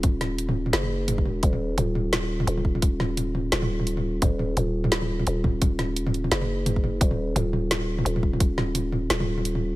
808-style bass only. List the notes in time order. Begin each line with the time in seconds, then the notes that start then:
Already playing: D#1
0.73 F#1
1.22 F1
1.43 D#1
1.78 D#1
2.47 D#1
3.53 D#1
4.22 D#1
4.57 D#1
5.27 D#1
6.32 F#1
7.01 D#1
7.36 D#1
8.05 D#1
9.10 D#1